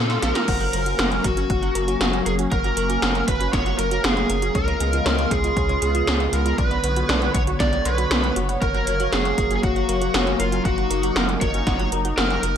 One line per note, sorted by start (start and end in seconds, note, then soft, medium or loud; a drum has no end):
0.00 0.18 A#2 medium
0.00 0.46 C#3 medium
0.00 0.44 A#3 medium
0.00 0.22 A4 medium
0.00 0.46 C5 medium
0.10 0.16 F4 medium
0.10 0.22 C6 loud
0.10 snare medium
0.10 closed hi-hat soft
0.22 0.33 A#1 medium
0.22 0.29 A#3 medium
0.22 1.27 A#4 medium
0.22 0.28 F5 medium
0.22 snare medium
0.22 closed hi-hat medium
0.35 0.42 F4 medium
0.35 0.44 F4 medium
0.35 snare medium
0.35 closed hi-hat medium
0.48 0.69 F#1 loud
0.48 4.51 F#3 medium
0.48 4.51 A#3 medium
0.48 4.51 C#4 medium
0.48 0.60 F#5 loud
0.48 kick loud
0.48 closed hi-hat medium
0.48 crash loud
0.61 0.67 F#3 medium
0.61 0.66 F#5 medium
0.61 closed hi-hat soft
0.73 0.94 F#1 medium
0.73 0.80 F#3 medium
0.73 0.82 A#4 medium
0.73 closed hi-hat medium
0.86 0.90 F#3 medium
0.86 0.94 F#4 medium
0.86 closed hi-hat medium
0.99 1.20 F#1 medium
0.99 1.05 A#3 medium
0.99 1.10 F#5 loud
0.99 snare loud
0.99 closed hi-hat medium
1.11 1.18 C#4 medium
1.11 1.17 F#5 medium
1.11 closed hi-hat soft
1.24 1.45 F#1 loud
1.24 1.31 F#3 medium
1.24 2.26 F#4 medium
1.24 1.32 A#4 medium
1.24 kick loud
1.24 closed hi-hat loud
1.37 1.43 C#4 medium
1.37 1.45 F#4 medium
1.37 closed hi-hat medium
1.50 1.70 F#1 loud
1.50 1.61 F#5 loud
1.50 kick loud
1.50 closed hi-hat medium
1.62 1.69 F#3 medium
1.62 1.67 F#5 medium
1.62 closed hi-hat soft
1.75 1.96 F#1 medium
1.75 1.82 F#3 medium
1.75 1.83 A#4 medium
1.75 closed hi-hat medium
1.88 1.92 F#3 medium
1.88 1.96 F#4 medium
1.88 closed hi-hat medium
2.01 2.21 F#1 medium
2.01 2.07 A#3 medium
2.01 2.12 F#5 loud
2.01 snare loud
2.01 closed hi-hat medium
2.13 2.20 C#4 medium
2.13 2.18 F#5 medium
2.13 closed hi-hat soft
2.26 2.47 F#1 loud
2.26 2.32 F#3 medium
2.26 2.33 G#4 medium
2.26 2.34 A#4 medium
2.26 closed hi-hat medium
2.39 2.45 C#4 medium
2.39 2.47 F#4 medium
2.39 closed hi-hat medium
2.51 2.72 F#1 loud
2.51 3.27 A#4 medium
2.51 2.63 F#5 loud
2.51 kick loud
2.51 closed hi-hat medium
2.64 2.71 F#3 medium
2.64 2.69 F#5 medium
2.64 closed hi-hat soft
2.77 2.98 F#1 medium
2.77 2.83 F#3 medium
2.77 2.85 A#4 medium
2.77 closed hi-hat loud
2.90 2.94 F#3 medium
2.90 2.98 F#4 medium
2.90 closed hi-hat medium
3.02 3.23 F#1 medium
3.02 3.09 A#3 medium
3.02 3.14 F#5 loud
3.02 snare loud
3.02 closed hi-hat soft
3.15 3.22 C#4 medium
3.15 3.20 F#5 medium
3.15 closed hi-hat soft
3.28 3.48 F#1 loud
3.28 3.34 F#3 medium
3.28 3.36 A#4 medium
3.28 3.51 B4 medium
3.28 kick loud
3.28 closed hi-hat medium
3.41 3.47 C#4 medium
3.41 3.49 F#4 medium
3.41 closed hi-hat medium
3.53 3.74 F#1 loud
3.53 3.78 C#5 loud
3.53 3.65 F#5 loud
3.53 kick loud
3.53 snare medium
3.53 closed hi-hat medium
3.66 3.72 F#3 medium
3.66 3.71 F#5 medium
3.66 closed hi-hat soft
3.78 3.99 F#1 medium
3.78 3.85 F#3 medium
3.78 4.05 A#4 loud
3.78 3.87 A#4 medium
3.78 closed hi-hat loud
3.91 3.95 F#3 medium
3.91 4.00 F#4 medium
3.91 closed hi-hat medium
4.04 4.25 F#1 medium
4.04 4.10 A#3 medium
4.04 4.56 G#4 medium
4.04 4.16 F#5 loud
4.04 snare loud
4.04 closed hi-hat medium
4.17 4.23 C#4 medium
4.17 4.22 F#5 medium
4.17 closed hi-hat soft
4.30 4.50 F#1 loud
4.30 4.36 F#3 medium
4.30 4.38 A#4 medium
4.30 closed hi-hat loud
4.42 4.49 C#4 medium
4.42 4.50 F#4 medium
4.42 closed hi-hat medium
4.55 4.75 C#2 loud
4.55 6.56 C#3 medium
4.55 6.56 G#3 medium
4.55 8.58 B3 medium
4.55 6.56 F4 medium
4.55 5.33 A#4 loud
4.55 4.67 C#5 loud
4.55 kick loud
4.55 closed hi-hat medium
4.68 4.74 C#3 medium
4.68 4.73 C#5 medium
4.68 closed hi-hat soft
4.80 5.01 C#2 loud
4.80 4.87 C#3 medium
4.80 4.89 G#4 medium
4.80 closed hi-hat medium
4.93 4.97 C#3 medium
4.93 5.01 F4 medium
4.93 closed hi-hat medium
5.06 5.26 C#2 medium
5.06 5.12 F3 medium
5.06 5.18 C#5 loud
5.06 snare loud
5.06 closed hi-hat soft
5.18 5.25 G#3 medium
5.18 5.23 C#5 medium
5.18 closed hi-hat soft
5.31 5.52 C#2 loud
5.31 5.38 C#3 medium
5.31 5.39 G#4 medium
5.31 6.36 G#4 medium
5.31 kick loud
5.31 closed hi-hat loud
5.44 5.50 G#3 medium
5.44 5.52 F4 medium
5.44 closed hi-hat medium
5.57 5.77 C#2 loud
5.57 5.68 C#5 loud
5.57 kick loud
5.57 closed hi-hat medium
5.69 5.76 C#3 medium
5.69 5.74 C#5 medium
5.69 closed hi-hat soft
5.82 6.03 C#2 medium
5.82 5.88 C#3 medium
5.82 5.90 G#4 medium
5.82 closed hi-hat loud
5.95 5.99 C#3 medium
5.95 6.03 F4 medium
5.95 closed hi-hat medium
6.07 6.28 C#2 medium
6.07 6.14 F3 medium
6.07 6.19 C#5 loud
6.07 snare loud
6.07 closed hi-hat medium
6.20 6.27 G#3 medium
6.20 6.25 C#5 medium
6.20 closed hi-hat soft
6.33 6.53 C#2 loud
6.33 6.39 C#3 medium
6.33 6.41 G#4 medium
6.33 6.57 A#4 medium
6.33 closed hi-hat loud
6.46 6.52 G#3 medium
6.46 6.54 F4 medium
6.46 closed hi-hat medium
6.58 6.79 B1 loud
6.58 8.60 D3 medium
6.58 7.34 B4 loud
6.58 10.61 C#5 medium
6.58 6.70 D5 loud
6.58 kick loud
6.58 closed hi-hat medium
6.71 6.77 B3 medium
6.71 6.76 D5 medium
6.71 closed hi-hat soft
6.84 7.04 B1 medium
6.84 6.90 B3 medium
6.84 6.92 B4 medium
6.84 closed hi-hat loud
6.96 7.00 B3 medium
6.96 7.05 F#4 medium
6.96 closed hi-hat medium
7.09 7.30 B1 medium
7.09 7.16 D4 medium
7.09 7.21 D5 loud
7.09 snare loud
7.09 closed hi-hat soft
7.22 7.28 F#4 medium
7.22 7.27 D5 medium
7.22 closed hi-hat soft
7.34 7.55 B1 loud
7.34 7.41 B3 medium
7.34 7.43 B4 medium
7.34 7.42 C#5 loud
7.34 kick loud
7.34 closed hi-hat medium
7.47 7.55 F#4 medium
7.47 7.54 F#4 medium
7.47 closed hi-hat medium
7.60 7.81 B1 loud
7.60 7.72 D5 loud
7.60 7.86 D5 loud
7.60 kick loud
7.60 snare medium
7.60 closed hi-hat medium
7.73 7.79 B3 medium
7.73 7.78 D5 medium
7.73 closed hi-hat soft
7.85 8.06 B1 medium
7.85 7.92 B3 medium
7.85 8.33 B4 loud
7.85 7.97 C6 loud
7.85 closed hi-hat medium
7.98 8.02 B3 medium
7.98 8.06 F#4 medium
7.98 closed hi-hat medium
8.11 8.31 B1 loud
8.11 8.17 D4 medium
8.11 8.16 C#5 medium
8.11 snare loud
8.11 closed hi-hat medium
8.24 8.27 B3 loud
8.24 8.36 B4 medium
8.24 closed hi-hat soft
8.36 8.57 F#1 loud
8.36 8.46 B3 medium
8.36 8.41 F#4 medium
8.36 closed hi-hat medium
8.49 8.55 B3 medium
8.49 8.54 F#5 loud
8.49 closed hi-hat medium
8.62 8.82 F#1 loud
8.62 12.57 F#3 medium
8.62 12.57 A#3 medium
8.62 9.14 A#4 medium
8.62 8.73 F#5 loud
8.62 kick loud
8.62 closed hi-hat soft
8.74 8.81 F#3 medium
8.74 8.79 F#5 medium
8.74 closed hi-hat soft
8.87 9.08 F#1 medium
8.87 8.94 F#3 medium
8.87 8.95 A#4 medium
8.87 closed hi-hat medium
9.00 9.04 F#3 medium
9.00 9.08 F#4 medium
9.00 closed hi-hat medium
9.13 9.33 F#1 medium
9.13 9.19 A#3 medium
9.13 9.55 G#4 medium
9.13 9.24 F#5 loud
9.13 snare loud
9.13 closed hi-hat soft
9.25 9.32 C#4 medium
9.25 9.30 F#5 medium
9.25 closed hi-hat soft
9.38 9.59 F#1 loud
9.38 9.44 F#3 medium
9.38 9.46 A#4 medium
9.38 kick loud
9.38 closed hi-hat medium
9.51 9.57 C#4 medium
9.51 9.59 F#4 medium
9.51 closed hi-hat medium
9.56 9.63 G#4 medium
9.63 9.84 F#1 loud
9.63 10.39 F#4 medium
9.63 9.75 F#5 loud
9.63 kick loud
9.63 closed hi-hat soft
9.76 9.83 F#3 medium
9.76 9.81 F#5 medium
9.76 closed hi-hat soft
9.89 10.09 F#1 medium
9.89 9.95 F#3 medium
9.89 9.97 A#4 medium
9.89 closed hi-hat medium
10.02 10.05 F#3 medium
10.02 10.10 F#4 medium
10.02 closed hi-hat medium
10.14 10.35 F#1 medium
10.14 10.21 A#3 medium
10.14 10.26 F#5 loud
10.14 snare loud
10.14 closed hi-hat medium
10.27 10.33 C#4 medium
10.27 10.32 F#5 medium
10.27 closed hi-hat soft
10.39 10.60 F#1 loud
10.39 10.46 F#3 medium
10.39 10.64 F4 medium
10.39 10.48 A#4 medium
10.39 closed hi-hat medium
10.52 10.59 C#4 medium
10.52 10.60 F#4 medium
10.52 closed hi-hat soft
10.65 10.86 F#1 loud
10.65 12.57 D#4 medium
10.65 11.17 F#4 loud
10.65 10.77 F#5 loud
10.65 kick loud
10.65 closed hi-hat soft
10.78 10.84 F#3 medium
10.78 10.83 F#5 medium
10.78 closed hi-hat soft
10.90 11.11 F#1 medium
10.90 10.97 F#3 medium
10.90 10.99 A#4 medium
10.90 closed hi-hat medium
11.03 11.07 F#3 medium
11.03 11.11 F#4 medium
11.03 closed hi-hat medium
11.16 11.36 F#1 medium
11.16 11.22 A#3 medium
11.16 11.23 A#4 loud
11.16 11.28 F#5 loud
11.16 snare loud
11.16 closed hi-hat soft
11.29 11.35 C#4 medium
11.29 11.34 F#5 medium
11.29 closed hi-hat soft
11.41 11.62 F#1 loud
11.41 11.48 F#3 medium
11.41 11.50 A#4 medium
11.41 11.89 C#5 loud
11.41 kick loud
11.41 closed hi-hat medium
11.54 11.60 C#4 medium
11.54 11.62 F#4 medium
11.54 closed hi-hat medium
11.67 11.87 F#1 loud
11.67 11.78 F#5 loud
11.67 kick loud
11.67 snare medium
11.67 closed hi-hat medium
11.79 11.86 F#3 medium
11.79 11.84 F#5 medium
11.79 closed hi-hat soft
11.92 12.13 F#1 medium
11.92 11.99 F#3 medium
11.92 12.00 A#4 medium
11.92 closed hi-hat medium
12.05 12.09 F#3 medium
12.05 12.13 F#4 medium
12.05 closed hi-hat medium
12.17 12.38 F#1 medium
12.17 12.24 A#3 medium
12.17 12.57 A#4 medium
12.17 12.29 F#5 loud
12.17 snare loud
12.17 closed hi-hat medium
12.30 12.37 C#4 medium
12.30 12.35 F#5 medium
12.30 closed hi-hat soft
12.43 12.57 F#1 loud
12.43 12.49 F#3 medium
12.43 12.51 A#4 medium
12.43 closed hi-hat medium